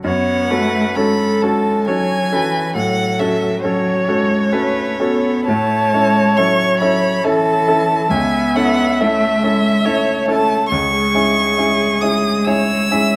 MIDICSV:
0, 0, Header, 1, 5, 480
1, 0, Start_track
1, 0, Key_signature, 3, "minor"
1, 0, Tempo, 913242
1, 24, Time_signature, 3, 2, 24, 8
1, 984, Tempo, 882353
1, 2424, Tempo, 958466
1, 2904, Tempo, 895522
1, 3384, Tempo, 867052
1, 5784, Tempo, 881057
1, 7120, End_track
2, 0, Start_track
2, 0, Title_t, "Violin"
2, 0, Program_c, 0, 40
2, 25, Note_on_c, 0, 78, 99
2, 501, Note_on_c, 0, 83, 98
2, 509, Note_off_c, 0, 78, 0
2, 746, Note_on_c, 0, 81, 94
2, 754, Note_off_c, 0, 83, 0
2, 977, Note_on_c, 0, 80, 113
2, 985, Note_off_c, 0, 81, 0
2, 1460, Note_off_c, 0, 80, 0
2, 1467, Note_on_c, 0, 78, 109
2, 1702, Note_on_c, 0, 76, 101
2, 1710, Note_off_c, 0, 78, 0
2, 1936, Note_off_c, 0, 76, 0
2, 1939, Note_on_c, 0, 73, 98
2, 2885, Note_off_c, 0, 73, 0
2, 2895, Note_on_c, 0, 81, 117
2, 3381, Note_on_c, 0, 85, 107
2, 3389, Note_off_c, 0, 81, 0
2, 3616, Note_off_c, 0, 85, 0
2, 3620, Note_on_c, 0, 83, 95
2, 3861, Note_on_c, 0, 81, 120
2, 3870, Note_off_c, 0, 83, 0
2, 4344, Note_on_c, 0, 80, 108
2, 4352, Note_off_c, 0, 81, 0
2, 4593, Note_on_c, 0, 78, 107
2, 4602, Note_off_c, 0, 80, 0
2, 4843, Note_on_c, 0, 76, 108
2, 4851, Note_off_c, 0, 78, 0
2, 5544, Note_off_c, 0, 76, 0
2, 5547, Note_on_c, 0, 81, 121
2, 5772, Note_off_c, 0, 81, 0
2, 5775, Note_on_c, 0, 85, 127
2, 6495, Note_on_c, 0, 87, 109
2, 6503, Note_off_c, 0, 85, 0
2, 6732, Note_on_c, 0, 88, 127
2, 6740, Note_off_c, 0, 87, 0
2, 7120, Note_off_c, 0, 88, 0
2, 7120, End_track
3, 0, Start_track
3, 0, Title_t, "Viola"
3, 0, Program_c, 1, 41
3, 23, Note_on_c, 1, 73, 86
3, 265, Note_on_c, 1, 71, 90
3, 273, Note_off_c, 1, 73, 0
3, 504, Note_on_c, 1, 69, 96
3, 512, Note_off_c, 1, 71, 0
3, 985, Note_on_c, 1, 73, 80
3, 993, Note_off_c, 1, 69, 0
3, 1229, Note_on_c, 1, 71, 73
3, 1237, Note_off_c, 1, 73, 0
3, 1465, Note_off_c, 1, 71, 0
3, 1469, Note_on_c, 1, 69, 77
3, 1945, Note_on_c, 1, 73, 93
3, 1953, Note_off_c, 1, 69, 0
3, 2427, Note_on_c, 1, 71, 75
3, 2435, Note_off_c, 1, 73, 0
3, 2660, Note_on_c, 1, 69, 76
3, 2667, Note_off_c, 1, 71, 0
3, 2898, Note_off_c, 1, 69, 0
3, 2901, Note_on_c, 1, 73, 105
3, 3869, Note_on_c, 1, 69, 96
3, 3877, Note_off_c, 1, 73, 0
3, 4338, Note_off_c, 1, 69, 0
3, 4341, Note_on_c, 1, 76, 95
3, 5309, Note_on_c, 1, 73, 88
3, 5318, Note_off_c, 1, 76, 0
3, 5550, Note_on_c, 1, 69, 82
3, 5558, Note_off_c, 1, 73, 0
3, 5783, Note_off_c, 1, 69, 0
3, 5786, Note_on_c, 1, 68, 96
3, 6741, Note_on_c, 1, 73, 88
3, 6749, Note_off_c, 1, 68, 0
3, 6985, Note_on_c, 1, 76, 77
3, 6993, Note_off_c, 1, 73, 0
3, 7120, Note_off_c, 1, 76, 0
3, 7120, End_track
4, 0, Start_track
4, 0, Title_t, "Grand piano"
4, 0, Program_c, 2, 0
4, 0, Control_c, 2, 64, 127
4, 22, Note_on_c, 2, 42, 78
4, 34, Control_c, 2, 64, 0
4, 120, Control_c, 2, 64, 127
4, 257, Note_off_c, 2, 42, 0
4, 262, Note_on_c, 2, 61, 61
4, 265, Note_on_c, 2, 66, 59
4, 267, Note_on_c, 2, 69, 57
4, 483, Note_off_c, 2, 61, 0
4, 484, Note_off_c, 2, 66, 0
4, 485, Note_off_c, 2, 69, 0
4, 507, Note_on_c, 2, 61, 60
4, 508, Note_on_c, 2, 66, 59
4, 510, Note_on_c, 2, 69, 68
4, 725, Note_off_c, 2, 61, 0
4, 726, Note_off_c, 2, 66, 0
4, 727, Note_off_c, 2, 69, 0
4, 750, Note_on_c, 2, 61, 58
4, 753, Note_on_c, 2, 66, 65
4, 755, Note_on_c, 2, 69, 68
4, 965, Note_off_c, 2, 61, 0
4, 966, Note_off_c, 2, 66, 0
4, 967, Note_off_c, 2, 69, 0
4, 986, Note_on_c, 2, 61, 55
4, 986, Note_on_c, 2, 66, 65
4, 990, Note_on_c, 2, 69, 68
4, 1205, Note_off_c, 2, 61, 0
4, 1205, Note_off_c, 2, 66, 0
4, 1207, Note_off_c, 2, 69, 0
4, 1227, Note_on_c, 2, 61, 62
4, 1229, Note_on_c, 2, 66, 58
4, 1231, Note_on_c, 2, 69, 65
4, 1443, Note_off_c, 2, 61, 0
4, 1444, Note_off_c, 2, 66, 0
4, 1444, Note_off_c, 2, 69, 0
4, 1462, Note_on_c, 2, 45, 74
4, 1473, Control_c, 2, 64, 0
4, 1571, Control_c, 2, 64, 127
4, 1693, Note_off_c, 2, 45, 0
4, 1703, Note_on_c, 2, 61, 53
4, 1707, Note_on_c, 2, 66, 65
4, 1709, Note_on_c, 2, 69, 63
4, 1920, Note_off_c, 2, 61, 0
4, 1922, Note_off_c, 2, 66, 0
4, 1923, Note_off_c, 2, 69, 0
4, 1944, Note_on_c, 2, 61, 65
4, 1948, Note_on_c, 2, 66, 58
4, 1948, Note_on_c, 2, 69, 58
4, 2160, Note_off_c, 2, 61, 0
4, 2163, Note_off_c, 2, 66, 0
4, 2163, Note_off_c, 2, 69, 0
4, 2187, Note_on_c, 2, 61, 55
4, 2188, Note_on_c, 2, 66, 64
4, 2190, Note_on_c, 2, 69, 69
4, 2405, Note_off_c, 2, 61, 0
4, 2406, Note_off_c, 2, 66, 0
4, 2406, Note_off_c, 2, 69, 0
4, 2427, Note_on_c, 2, 61, 66
4, 2429, Note_on_c, 2, 66, 60
4, 2429, Note_on_c, 2, 69, 67
4, 2643, Note_off_c, 2, 61, 0
4, 2644, Note_off_c, 2, 66, 0
4, 2644, Note_off_c, 2, 69, 0
4, 2664, Note_on_c, 2, 61, 62
4, 2666, Note_on_c, 2, 66, 63
4, 2669, Note_on_c, 2, 69, 67
4, 2885, Note_off_c, 2, 61, 0
4, 2886, Note_off_c, 2, 66, 0
4, 2888, Note_off_c, 2, 69, 0
4, 2906, Note_on_c, 2, 45, 76
4, 2913, Control_c, 2, 64, 0
4, 2994, Control_c, 2, 64, 127
4, 3143, Note_off_c, 2, 45, 0
4, 3151, Note_on_c, 2, 61, 61
4, 3151, Note_on_c, 2, 64, 55
4, 3154, Note_on_c, 2, 69, 57
4, 3363, Note_off_c, 2, 61, 0
4, 3364, Note_off_c, 2, 64, 0
4, 3365, Note_off_c, 2, 69, 0
4, 3386, Note_on_c, 2, 61, 65
4, 3386, Note_on_c, 2, 64, 58
4, 3389, Note_on_c, 2, 69, 65
4, 3602, Note_off_c, 2, 61, 0
4, 3602, Note_off_c, 2, 64, 0
4, 3604, Note_off_c, 2, 69, 0
4, 3627, Note_on_c, 2, 61, 55
4, 3630, Note_on_c, 2, 64, 63
4, 3631, Note_on_c, 2, 69, 60
4, 3841, Note_off_c, 2, 61, 0
4, 3843, Note_off_c, 2, 64, 0
4, 3843, Note_off_c, 2, 69, 0
4, 3867, Note_on_c, 2, 61, 64
4, 3868, Note_on_c, 2, 64, 68
4, 3871, Note_on_c, 2, 69, 64
4, 4080, Note_off_c, 2, 61, 0
4, 4080, Note_off_c, 2, 64, 0
4, 4082, Note_off_c, 2, 69, 0
4, 4105, Note_on_c, 2, 61, 57
4, 4105, Note_on_c, 2, 64, 64
4, 4109, Note_on_c, 2, 69, 77
4, 4321, Note_off_c, 2, 61, 0
4, 4321, Note_off_c, 2, 64, 0
4, 4323, Note_off_c, 2, 69, 0
4, 4344, Note_on_c, 2, 37, 75
4, 4349, Control_c, 2, 64, 0
4, 4428, Control_c, 2, 64, 127
4, 4582, Note_off_c, 2, 37, 0
4, 4590, Note_on_c, 2, 61, 61
4, 4593, Note_on_c, 2, 64, 65
4, 4597, Note_on_c, 2, 69, 66
4, 4813, Note_off_c, 2, 61, 0
4, 4815, Note_off_c, 2, 64, 0
4, 4817, Note_off_c, 2, 69, 0
4, 4839, Note_on_c, 2, 61, 57
4, 4842, Note_on_c, 2, 64, 66
4, 4843, Note_on_c, 2, 69, 61
4, 5053, Note_off_c, 2, 61, 0
4, 5055, Note_off_c, 2, 64, 0
4, 5055, Note_off_c, 2, 69, 0
4, 5077, Note_on_c, 2, 61, 61
4, 5078, Note_on_c, 2, 64, 61
4, 5081, Note_on_c, 2, 69, 64
4, 5286, Note_off_c, 2, 61, 0
4, 5287, Note_off_c, 2, 64, 0
4, 5288, Note_off_c, 2, 69, 0
4, 5310, Note_on_c, 2, 61, 63
4, 5312, Note_on_c, 2, 64, 69
4, 5313, Note_on_c, 2, 69, 68
4, 5523, Note_off_c, 2, 61, 0
4, 5524, Note_off_c, 2, 64, 0
4, 5524, Note_off_c, 2, 69, 0
4, 5546, Note_on_c, 2, 61, 69
4, 5549, Note_on_c, 2, 64, 62
4, 5549, Note_on_c, 2, 69, 70
4, 5763, Note_off_c, 2, 61, 0
4, 5764, Note_off_c, 2, 64, 0
4, 5764, Note_off_c, 2, 69, 0
4, 5788, Note_on_c, 2, 37, 79
4, 5793, Control_c, 2, 64, 0
4, 5892, Control_c, 2, 64, 127
4, 6017, Note_off_c, 2, 37, 0
4, 6022, Note_on_c, 2, 61, 63
4, 6023, Note_on_c, 2, 64, 60
4, 6026, Note_on_c, 2, 68, 67
4, 6239, Note_off_c, 2, 61, 0
4, 6240, Note_off_c, 2, 64, 0
4, 6241, Note_off_c, 2, 68, 0
4, 6261, Note_on_c, 2, 61, 59
4, 6261, Note_on_c, 2, 64, 60
4, 6265, Note_on_c, 2, 68, 67
4, 6480, Note_off_c, 2, 61, 0
4, 6480, Note_off_c, 2, 64, 0
4, 6482, Note_off_c, 2, 68, 0
4, 6498, Note_on_c, 2, 61, 59
4, 6501, Note_on_c, 2, 64, 62
4, 6503, Note_on_c, 2, 68, 60
4, 6719, Note_off_c, 2, 61, 0
4, 6720, Note_off_c, 2, 64, 0
4, 6721, Note_off_c, 2, 68, 0
4, 6740, Note_on_c, 2, 61, 60
4, 6743, Note_on_c, 2, 64, 59
4, 6747, Note_on_c, 2, 68, 74
4, 6960, Note_off_c, 2, 61, 0
4, 6962, Note_off_c, 2, 64, 0
4, 6964, Note_off_c, 2, 68, 0
4, 6984, Note_on_c, 2, 61, 65
4, 6984, Note_on_c, 2, 64, 63
4, 6989, Note_on_c, 2, 68, 68
4, 7120, Note_off_c, 2, 61, 0
4, 7120, Note_off_c, 2, 64, 0
4, 7120, Note_off_c, 2, 68, 0
4, 7120, End_track
5, 0, Start_track
5, 0, Title_t, "Cello"
5, 0, Program_c, 3, 42
5, 25, Note_on_c, 3, 59, 75
5, 273, Note_on_c, 3, 57, 83
5, 281, Note_off_c, 3, 59, 0
5, 509, Note_off_c, 3, 57, 0
5, 513, Note_on_c, 3, 56, 64
5, 987, Note_on_c, 3, 54, 76
5, 995, Note_off_c, 3, 56, 0
5, 1233, Note_on_c, 3, 52, 78
5, 1242, Note_off_c, 3, 54, 0
5, 1461, Note_off_c, 3, 52, 0
5, 1464, Note_on_c, 3, 54, 70
5, 1932, Note_off_c, 3, 54, 0
5, 1947, Note_on_c, 3, 54, 78
5, 2186, Note_on_c, 3, 56, 78
5, 2194, Note_off_c, 3, 54, 0
5, 2432, Note_on_c, 3, 57, 76
5, 2439, Note_off_c, 3, 56, 0
5, 2664, Note_off_c, 3, 57, 0
5, 2667, Note_on_c, 3, 59, 83
5, 2906, Note_on_c, 3, 57, 77
5, 2914, Note_off_c, 3, 59, 0
5, 3150, Note_on_c, 3, 56, 85
5, 3158, Note_off_c, 3, 57, 0
5, 3388, Note_on_c, 3, 54, 70
5, 3397, Note_off_c, 3, 56, 0
5, 3864, Note_off_c, 3, 54, 0
5, 3872, Note_on_c, 3, 52, 76
5, 4346, Note_on_c, 3, 59, 86
5, 4354, Note_off_c, 3, 52, 0
5, 4847, Note_on_c, 3, 57, 90
5, 4855, Note_off_c, 3, 59, 0
5, 5082, Note_on_c, 3, 56, 92
5, 5090, Note_off_c, 3, 57, 0
5, 5317, Note_on_c, 3, 57, 75
5, 5325, Note_off_c, 3, 56, 0
5, 5786, Note_off_c, 3, 57, 0
5, 5789, Note_on_c, 3, 56, 84
5, 7120, Note_off_c, 3, 56, 0
5, 7120, End_track
0, 0, End_of_file